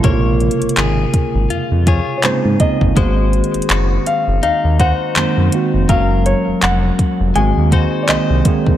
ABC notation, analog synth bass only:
X:1
M:4/4
L:1/16
Q:"Swing 16ths" 1/4=82
K:Abmix
V:1 name="Analog synth bass" clef=bass
B,,,3 A,,, A,,,2 z A,,, F,, F,,2 z A,, A,, z =G,,, | A,,,3 G,,, G,,,2 z G,,, E,, E,,2 z G,, G,, z F,,, | G,,,3 F,,, F,,,2 z F,,, A,,, E,,2 z C,, C,, z C,, |]